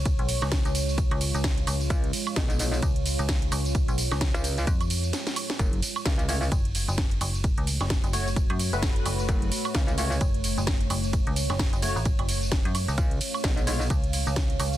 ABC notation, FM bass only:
X:1
M:4/4
L:1/16
Q:"Swing 16ths" 1/4=130
K:F#m
V:1 name="FM bass" clef=bass
C,, B,,,2 C,,2 C,,4 C,,2 C,,3 C,,2 | z8 C,,3 C,,3 C,,2- | C,, B,,,2 C,,2 z3 ^E,,4 z4 | z8 F,,,3 F,,,3 F,,,2- |
F,,, C,,2 F,,,2 F,,,4 F,,2 F,,,3 F,,,2 | z8 F,,,3 F,,,3 F,,,2- | F,,, C,,2 F,,,2 F,,,2 A,,,2 F,,,4 F,,2 C,, | z8 C,,3 C,,3 C,,2 |]